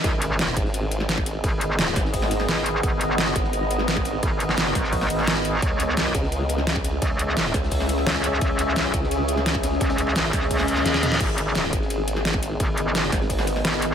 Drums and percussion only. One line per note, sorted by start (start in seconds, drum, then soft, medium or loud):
0.04 kick loud
0.04 closed hi-hat medium
0.04 ride medium
0.21 snare soft
0.21 closed hi-hat loud
0.21 ride medium
0.39 snare loud
0.39 closed hi-hat medium
0.39 ride medium
0.57 kick loud
0.57 closed hi-hat loud
0.57 ride medium
0.65 snare soft
0.74 closed hi-hat medium
0.74 ride medium
0.91 closed hi-hat loud
0.91 ride medium
1.00 snare soft
1.09 snare loud
1.09 closed hi-hat medium
1.09 ride medium
1.17 kick loud
1.17 snare medium
1.17 snare soft
1.26 snare medium
1.26 closed hi-hat loud
1.26 ride medium
1.44 kick loud
1.44 closed hi-hat medium
1.44 ride medium
1.61 closed hi-hat medium
1.61 ride medium
1.78 snare loud
1.78 closed hi-hat medium
1.78 ride loud
1.88 snare medium
1.96 kick loud
1.96 snare medium
1.96 open hi-hat medium
1.96 ride medium
2.05 snare medium
2.14 kick medium
2.14 closed hi-hat medium
2.14 open hi-hat medium
2.22 snare medium
2.22 snare soft
2.31 closed hi-hat loud
2.31 ride medium
2.40 snare soft
2.49 snare loud
2.49 closed hi-hat medium
2.49 ride loud
2.58 snare soft
2.66 closed hi-hat medium
2.66 ride medium
2.83 kick loud
2.83 closed hi-hat medium
2.83 ride medium
3.01 snare soft
3.01 closed hi-hat medium
3.01 ride medium
3.18 snare loud
3.18 closed hi-hat medium
3.18 ride medium
3.35 kick loud
3.35 closed hi-hat loud
3.35 ride medium
3.44 snare soft
3.53 closed hi-hat medium
3.53 ride medium
3.71 closed hi-hat medium
3.71 ride medium
3.79 snare soft
3.87 snare loud
3.87 closed hi-hat medium
3.87 ride medium
3.97 kick loud
3.97 snare medium
3.97 snare soft
4.05 snare medium
4.05 closed hi-hat medium
4.05 ride medium
4.23 kick loud
4.23 closed hi-hat medium
4.23 ride medium
4.40 closed hi-hat medium
4.40 ride medium
4.49 snare soft
4.57 snare loud
4.57 closed hi-hat medium
4.57 ride medium
4.67 snare medium
4.75 kick loud
4.75 snare medium
4.75 open hi-hat medium
4.75 ride medium
4.84 snare medium
4.93 kick medium
4.93 closed hi-hat medium
4.93 open hi-hat medium
5.01 snare medium
5.01 snare soft
5.10 closed hi-hat medium
5.10 ride medium
5.19 snare soft
5.27 snare loud
5.27 closed hi-hat medium
5.27 ride medium
5.37 snare soft
5.44 closed hi-hat medium
5.44 ride medium
5.62 kick loud
5.62 closed hi-hat medium
5.62 ride medium
5.79 snare soft
5.79 closed hi-hat medium
5.79 ride medium
5.97 snare loud
5.97 closed hi-hat medium
5.97 ride medium
6.14 kick loud
6.14 closed hi-hat medium
6.14 ride medium
6.23 snare soft
6.32 closed hi-hat medium
6.32 ride medium
6.49 closed hi-hat medium
6.49 ride medium
6.58 snare soft
6.67 snare loud
6.67 closed hi-hat medium
6.67 ride medium
6.76 kick loud
6.76 snare medium
6.76 snare soft
6.84 snare medium
6.84 closed hi-hat medium
6.84 ride medium
7.02 kick loud
7.02 closed hi-hat medium
7.02 ride loud
7.19 closed hi-hat medium
7.19 ride medium
7.36 snare loud
7.36 closed hi-hat medium
7.36 ride medium
7.46 snare medium
7.54 kick loud
7.54 snare medium
7.54 open hi-hat medium
7.54 ride medium
7.63 snare medium
7.71 kick medium
7.71 closed hi-hat medium
7.71 open hi-hat medium
7.80 snare soft
7.89 closed hi-hat medium
7.89 ride medium
7.98 snare soft
8.06 snare loud
8.06 closed hi-hat medium
8.06 ride loud
8.15 snare soft
8.24 closed hi-hat medium
8.24 ride medium
8.41 kick loud
8.41 closed hi-hat medium
8.41 ride medium
8.59 snare soft
8.59 closed hi-hat loud
8.59 ride medium
8.76 snare loud
8.76 closed hi-hat medium
8.76 ride loud
8.94 kick loud
8.94 closed hi-hat loud
8.94 ride medium
9.03 snare soft
9.11 closed hi-hat medium
9.11 ride medium
9.28 closed hi-hat loud
9.28 ride medium
9.37 snare soft
9.46 snare loud
9.46 closed hi-hat medium
9.46 ride medium
9.55 kick loud
9.55 snare medium
9.55 snare soft
9.63 snare loud
9.63 closed hi-hat medium
9.63 ride medium
9.73 snare soft
9.80 kick loud
9.80 snare soft
9.80 closed hi-hat medium
9.80 ride medium
9.89 snare loud
9.89 ride medium
9.98 snare medium
9.98 closed hi-hat loud
10.07 snare soft
10.07 ride medium
10.15 snare loud
10.15 closed hi-hat medium
10.15 ride medium
10.24 snare soft
10.33 kick loud
10.33 snare medium
10.33 open hi-hat medium
10.33 ride medium
10.42 snare medium
10.51 kick medium
10.51 closed hi-hat medium
10.51 open hi-hat medium
10.59 snare medium
10.59 snare soft
10.67 closed hi-hat loud
10.67 ride medium
10.77 snare soft
10.85 snare medium
10.85 snare loud
10.85 closed hi-hat medium
10.85 ride medium
10.94 snare medium
10.94 snare loud
10.94 ride medium
11.03 snare loud
11.03 closed hi-hat medium
11.03 mid tom medium
11.03 ride medium
11.11 snare soft
11.11 snare medium
11.20 kick loud
11.20 closed hi-hat medium
11.20 crash medium
11.20 ride medium
11.37 snare soft
11.37 closed hi-hat loud
11.37 ride medium
11.55 snare loud
11.55 closed hi-hat medium
11.55 ride medium
11.73 kick loud
11.73 closed hi-hat loud
11.73 ride medium
11.82 snare soft
11.90 closed hi-hat medium
11.90 ride medium
12.08 closed hi-hat loud
12.08 ride medium
12.16 snare soft
12.25 snare loud
12.25 closed hi-hat medium
12.25 ride medium
12.34 kick loud
12.34 snare medium
12.34 snare soft
12.42 snare medium
12.42 closed hi-hat loud
12.42 ride medium
12.60 kick loud
12.60 closed hi-hat medium
12.60 ride medium
12.77 closed hi-hat loud
12.77 ride medium
12.94 snare loud
12.94 closed hi-hat medium
12.94 ride medium
13.04 snare medium
13.12 kick loud
13.12 snare medium
13.12 open hi-hat medium
13.12 ride medium
13.21 snare medium
13.30 kick medium
13.30 closed hi-hat medium
13.30 open hi-hat medium
13.39 snare medium
13.39 snare soft
13.47 closed hi-hat medium
13.47 ride medium
13.56 snare soft
13.64 snare loud
13.64 closed hi-hat medium
13.64 ride medium
13.73 snare soft
13.82 closed hi-hat loud
13.82 ride medium